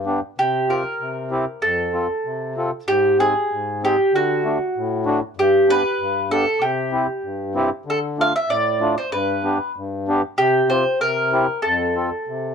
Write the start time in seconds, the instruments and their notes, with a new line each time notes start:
Already playing: accordion G2
0.06 accordion B3 D4 G4
0.38 accordion C3, mandolin G4
0.69 accordion C4 F4 G4, mandolin A#4
1.00 accordion C3
1.31 accordion C4 E4 G4
1.62 accordion F2, mandolin A4
1.93 accordion C4 F4 A4
2.25 accordion C3
2.57 accordion C4 F4 A4
2.88 accordion G#2, mandolin G4
3.19 accordion C4 D#4 G#4, mandolin G#4
3.52 accordion G#2
3.83 accordion C4 D#4 G#4, mandolin G4
4.13 accordion D3, mandolin F#4
4.44 accordion A3 D4 F#4
4.76 accordion A2
5.06 accordion A3 D4 F#4
5.37 accordion G2, mandolin G4
5.68 accordion B3 D4 G4, mandolin B4
6.00 accordion G2
6.31 accordion B3 D4 G4, mandolin A4
6.61 accordion C3, mandolin G4
6.92 accordion C4 E4 G4
7.23 accordion G2
7.55 accordion C4 E4 G4
7.86 accordion D3
7.90 mandolin A4
8.18 accordion A3 D4 F4, mandolin F5
8.36 mandolin E5
8.48 accordion A2, mandolin D5
8.80 accordion A3 D4 F4
8.98 mandolin C5
9.12 accordion G2, mandolin B4
9.44 accordion B3 D4 G4
9.77 accordion G2
10.08 accordion B3 D4 G4
10.38 accordion C3, mandolin G4
10.70 accordion C4 F4 G4, mandolin C5
11.01 accordion C3, mandolin A#4
11.32 accordion C4 E4 G4
11.62 accordion F2, mandolin A4
11.95 accordion C4 F4 A4
12.27 accordion C3